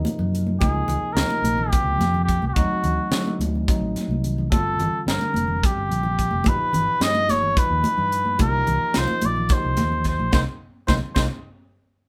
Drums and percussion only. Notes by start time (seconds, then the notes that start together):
0.05 closed hi-hat, muted conga
0.19 low conga
0.35 closed hi-hat
0.47 high conga
0.61 kick, closed hi-hat, muted conga
0.75 low conga
0.88 closed hi-hat, low conga
1.17 snare, closed hi-hat
1.30 muted conga
1.44 closed hi-hat, high conga, low conga
1.58 low conga
1.73 kick, closed hi-hat
2.01 snare, closed hi-hat, muted conga
2.14 low conga
2.29 kick, closed hi-hat
2.42 high conga
2.56 kick, closed hi-hat, muted conga
2.71 low conga
2.84 closed hi-hat, low conga
2.99 low conga
3.12 snare, closed hi-hat
3.27 muted conga, low conga
3.41 closed hi-hat, high conga
3.55 low conga
3.68 kick, closed hi-hat
3.96 snare, closed hi-hat, high conga
4.11 high conga
4.24 closed hi-hat, low conga
4.38 low conga
4.52 kick, closed hi-hat, muted conga
4.67 low conga
4.80 closed hi-hat, low conga
5.08 snare, closed hi-hat
5.21 muted conga
5.34 closed hi-hat, high conga
5.48 low conga
5.63 kick, closed hi-hat
5.92 closed hi-hat
6.03 low conga
6.19 kick, closed hi-hat
6.31 high conga
6.44 kick, closed hi-hat, muted conga
6.59 low conga
6.73 closed hi-hat, low conga
7.01 snare, closed hi-hat
7.15 muted conga
7.29 snare, closed hi-hat, high conga, low conga
7.42 low conga
7.57 kick, closed hi-hat
7.84 closed hi-hat, muted conga
7.98 low conga
8.12 closed hi-hat
8.25 high conga
8.39 kick, closed hi-hat, muted conga
8.53 low conga
8.67 closed hi-hat, low conga
8.94 snare, closed hi-hat
9.08 muted conga
9.21 closed hi-hat, high conga, low conga
9.36 low conga
9.49 kick, snare, closed hi-hat
9.77 snare, closed hi-hat, muted conga
9.92 low conga
10.04 kick, snare, closed hi-hat
10.19 high conga
10.33 kick, snare, muted conga
10.88 kick, snare, muted conga
11.16 kick, snare, muted conga